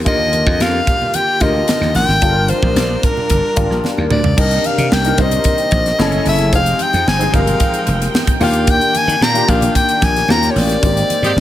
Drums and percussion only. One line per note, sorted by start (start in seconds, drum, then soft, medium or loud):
0.06 kick loud
0.06 closed hi-hat medium
0.06 muted conga soft
0.33 closed hi-hat medium
0.33 muted conga soft
0.33 high conga medium
0.47 kick loud
0.47 high conga medium
0.60 snare loud
0.60 closed hi-hat medium
0.60 muted conga soft
0.87 kick medium
0.87 closed hi-hat medium
0.87 muted conga soft
0.87 low conga medium
1.02 low conga medium
1.14 closed hi-hat medium
1.14 muted conga soft
1.14 high conga medium
1.40 kick medium
1.40 closed hi-hat medium
1.40 muted conga soft
1.40 high conga medium
1.68 snare loud
1.68 closed hi-hat medium
1.68 high conga medium
1.82 snare soft
1.82 high conga medium
1.95 snare soft
1.95 open hi-hat medium
1.95 muted conga soft
1.95 low conga medium
2.09 snare soft
2.22 kick loud
2.22 closed hi-hat medium
2.48 closed hi-hat medium
2.48 muted conga soft
2.48 high conga medium
2.63 kick medium
2.63 high conga medium
2.76 snare loud
2.76 closed hi-hat medium
3.03 kick medium
3.03 closed hi-hat medium
3.03 muted conga soft
3.03 low conga medium
3.17 low conga medium
3.30 kick medium
3.30 closed hi-hat medium
3.30 muted conga soft
3.30 high conga medium
3.56 kick loud
3.56 closed hi-hat medium
3.56 high conga medium
3.71 snare soft
3.84 snare medium
3.84 high conga medium
3.98 high conga medium
4.10 mid tom medium
4.10 muted conga soft
4.10 low conga medium
4.24 floor tom medium
4.38 kick loud
4.38 crash medium
4.51 closed hi-hat medium
4.64 closed hi-hat medium
4.64 high conga medium
4.78 closed hi-hat medium
4.78 high conga medium
4.92 snare loud
5.05 closed hi-hat medium
5.18 kick medium
5.18 closed hi-hat medium
5.31 closed hi-hat medium
5.31 low conga medium
5.44 kick medium
5.44 closed hi-hat medium
5.44 muted conga soft
5.44 high conga medium
5.58 closed hi-hat soft
5.71 kick loud
5.71 closed hi-hat medium
5.71 muted conga soft
5.71 high conga medium
5.86 snare soft
5.86 closed hi-hat medium
5.99 snare loud
5.99 high conga medium
6.12 closed hi-hat soft
6.12 high conga medium
6.26 open hi-hat medium
6.26 muted conga soft
6.26 low conga medium
6.39 snare soft
6.39 closed hi-hat soft
6.53 kick loud
6.53 closed hi-hat medium
6.53 muted conga soft
6.66 closed hi-hat medium
6.79 closed hi-hat medium
6.79 high conga medium
6.93 closed hi-hat medium
6.93 high conga medium
7.07 snare loud
7.07 muted conga soft
7.21 closed hi-hat medium
7.34 kick loud
7.34 closed hi-hat medium
7.34 muted conga soft
7.47 closed hi-hat medium
7.47 low conga medium
7.60 kick medium
7.60 closed hi-hat medium
7.60 high conga medium
7.74 closed hi-hat soft
7.87 closed hi-hat medium
7.87 muted conga soft
7.87 high conga medium
8.02 snare soft
8.02 closed hi-hat medium
8.14 snare loud
8.14 high conga medium
8.27 kick medium
8.27 closed hi-hat medium
8.27 high conga medium
8.41 open hi-hat medium
8.41 low conga medium
8.54 closed hi-hat soft
8.67 kick loud
8.67 closed hi-hat medium
8.81 closed hi-hat soft
8.95 closed hi-hat medium
8.95 high conga medium
9.07 closed hi-hat medium
9.07 high conga medium
9.21 snare loud
9.21 muted conga soft
9.35 closed hi-hat medium
9.48 kick medium
9.48 closed hi-hat medium
9.48 muted conga soft
9.61 closed hi-hat medium
9.61 low conga medium
9.75 kick medium
9.75 closed hi-hat medium
9.75 muted conga soft
9.75 high conga medium
9.89 closed hi-hat medium
10.01 kick loud
10.01 closed hi-hat medium
10.01 muted conga soft
10.01 high conga medium
10.16 snare soft
10.16 closed hi-hat soft
10.28 snare loud
10.28 muted conga soft
10.28 high conga medium
10.42 snare soft
10.42 closed hi-hat medium
10.42 high conga medium
10.56 snare soft
10.56 open hi-hat medium
10.56 muted conga soft
10.56 low conga medium
10.69 snare soft
10.69 closed hi-hat soft
10.83 kick loud
10.83 closed hi-hat medium
10.97 closed hi-hat medium
11.10 closed hi-hat medium
11.10 muted conga soft
11.10 high conga medium
11.23 closed hi-hat medium
11.23 high conga medium